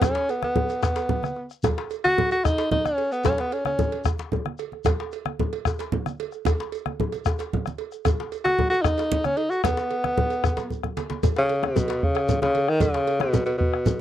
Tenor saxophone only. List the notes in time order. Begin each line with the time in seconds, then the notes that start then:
0.03 C#4
0.30 B3
0.44 B3
0.83 B3
2.04 F#4
2.32 F#4
2.44 D#4
2.71 D#4
2.85 C#4
3.12 B3
3.25 C#4
3.40 B3
3.53 C#4
3.66 C#4
8.44 F#4
8.70 F#4
8.82 D#4
9.25 C#4
9.37 D#4
9.50 F#4
9.64 B3
11.38 C#3
11.65 B2
12.03 C#3
12.42 C#3
12.69 D#3
12.82 C#3
13.21 B2
13.46 B2
13.58 B2